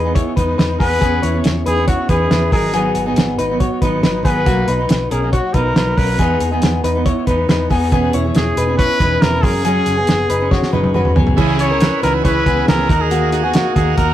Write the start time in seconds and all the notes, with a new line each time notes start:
Already playing: E2 D#4 G#4 B4
0.04 B3 D#4 G#4
0.15 E4 C#5, kick, closed hi-hat
0.36 E2 G#3 B3 D#4 G#4 B4, kick, closed hi-hat
0.58 E2 G#3 B3 D#4 G#4 B4, snare, closed hi-hat
0.80 E2 G#3 B3 D#4 G#4 B4, kick, open hi-hat
1.01 E2 E3 B3 C#4 G#4, kick, closed hi-hat
1.22 E2 E4 C#5, closed hi-hat
1.34 B3 C#4 G#4
1.44 E2, snare, closed hi-hat
1.66 E2 D#4 G#4 B4, closed hi-hat
1.77 B3 C#4 G#4
1.87 E4 F#4 C#5, kick, closed hi-hat
2.08 E2 E3 B3 C#4 D#4 G#4 B4, kick, closed hi-hat
2.31 E2 E3 B3 C#4 E4 G#4 B4, snare, closed hi-hat
2.52 G#1 D#3 F#3 B3 D#4 G#4 A#4, kick, open hi-hat
2.73 G#2 D#3 F#3 B3 D#4 G#4, closed hi-hat
2.95 G#1, closed hi-hat
3.06 F#3 B3 D#4 G#4
3.16 G#1, snare, closed hi-hat
3.38 G#1 D#4 B4, closed hi-hat
3.50 F#3 B3 D#4
3.60 F#4 C#5, kick, closed hi-hat
3.82 G#1 D#3 F#3 B3 D#4 B4, kick, closed hi-hat
4.03 G#1 D#3 F#3 B3 D#4 B4, snare, closed hi-hat
4.24 G#1 D#3 F#3 B3 D#4 G#4 B4, kick, closed hi-hat
4.46 B1 B2 F#3 A#3 D#4 F#4, kick, closed hi-hat
4.68 B1 D#4 B4, closed hi-hat
4.79 F#3 D#4
4.89 B1, snare, closed hi-hat
5.11 B1 C#4 G#4 A#4, closed hi-hat
5.22 F#3 A#3 D#4
5.32 F#4 C#5, kick, closed hi-hat
5.54 B1 B2 F#3 A#3 D#4 A#4 B4, kick, closed hi-hat
5.76 B1 B2 F#3 A#3 D#4 B4, snare, closed hi-hat
5.97 B1 B2 F#3 A#3 C#4 D#4 A#4 B4, kick, open hi-hat
6.19 E2 E3 G#3 B3 D#4 G#4, kick, closed hi-hat
6.40 E2, closed hi-hat
6.51 G#3 B3 D#4 G#4
6.62 E2, snare, closed hi-hat
6.84 E2 D#4 B4, closed hi-hat
6.95 G#3 B3 D#4
7.06 E4 C#5, kick, closed hi-hat
7.27 E2 E3 G#3 B3 D#4 B4, kick, closed hi-hat
7.48 E2 E3 G#3 B3 D#4 B4, snare, closed hi-hat
7.70 E2 E3 G#3 B3 D#4 G#4, kick, open hi-hat
7.92 E1 E3 B3 C#4 G#4, kick, closed hi-hat
8.13 E1 E4 C#5, closed hi-hat
8.24 B3 C#4 G#4
8.35 E1 G#4, snare, closed hi-hat
8.56 E1 D#4 B4, closed hi-hat
8.68 B3 C#4 G#4
8.78 E4 B4 C#5, kick, closed hi-hat
9.00 E1 E3 B3 C#4 D#4 G#4 B4, kick, closed hi-hat
9.21 E1 E3 B3 C#4 E4 G#4 A#4 B4, snare, closed hi-hat
9.42 F#1 F#3 G#3 C#4 G#4 A#4, kick, open hi-hat
9.64 F#3 G#3 C#4 G#4, closed hi-hat
9.86 F#1, closed hi-hat
9.97 G#3 B3 C#4 G#4
10.07 F#1, snare, closed hi-hat
10.30 F#1 D#4 B4, closed hi-hat
10.40 G#3 C#4 G#4
10.51 F#4 C#5, kick, snare
10.63 snare
10.73 F#1 F#3 G#3 C#4 D#4 G#4 B4, high tom
10.84 high tom
10.94 F#1 F#3 G#3 C#4 F#4 G#4 B4, mid tom
11.05 mid tom
11.16 F#1 F#3 G#3 B3 C#4 G#4, floor tom
11.27 floor tom
11.36 C#2 C#3 E3 G#3 C#4 E4 G#4, kick, crash
11.58 C#4 E4 G#4 C#5, closed hi-hat
11.70 G#3 C#4 G#4 A#4
11.80 C#4 E4 B4, snare, closed hi-hat
12.01 C#2 E3 G#3 C#4 D#4 E4 F#4 G#4 A#4 B4, closed hi-hat
12.23 C#2 C#4 E4 G#4 B4 C#5, kick, closed hi-hat
12.45 C#2 B3 C#4 E4 G#4, kick, closed hi-hat
12.67 C#2 E3 G#3 C#4 E4 G#4 A#4, snare, closed hi-hat
12.78 G#3 C#4 G#4
12.88 D#2 D#3 A#3 D#4 F#4 A#4, kick, closed hi-hat
13.01 G#4
13.10 D#3 A#3 D#4 F#4, closed hi-hat
13.32 D#4 F#4 G#4, closed hi-hat
13.37 G#4
13.42 A#3 B3 D#4 F#4 G#4
13.54 A#3 D#4 F#4 G#4, snare, closed hi-hat
13.75 D#2 D#3 A#3 D#4 F#4 G#4 A#4, kick, closed hi-hat
13.97 D#2 D#4 F#4 A#4, kick, closed hi-hat